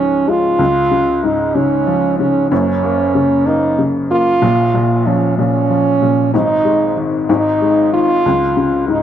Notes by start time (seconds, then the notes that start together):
Already playing: C#2 G#2 C#3 F3 C#4
0.28 G#3 F4
0.59 C#2
0.91 C#3
1.23 G#2 D#4
1.55 C#3 C#4
1.87 F3
2.19 C#3 C#4
2.51 F#1 F#2 C#4
2.83 A#3
3.15 C#3
3.47 A#3 D#4
3.78 C#3
4.10 A#3 F4
4.42 A#1 A#2
4.74 A#2
5.06 F3 C#4
5.38 A#2 C#4
5.70 F3
6.02 A#2
6.34 G#1 G#2 D#4
6.65 G#3
6.97 D#3
7.29 G#1 G#2 D#4
7.61 G#3
7.93 D#3 F4
8.26 C#2
8.57 C#3
8.88 G#2 D#4